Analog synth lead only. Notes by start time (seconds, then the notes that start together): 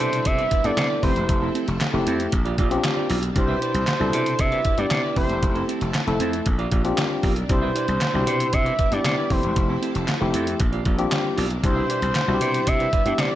Already playing: C5
0.26 E5
0.65 D5
1.03 C5
3.38 C5
4.40 E5
4.78 D5
5.17 C5
7.50 C5
8.53 E5
8.93 D5
9.32 C5
11.64 C5
12.67 E5
13.20 D5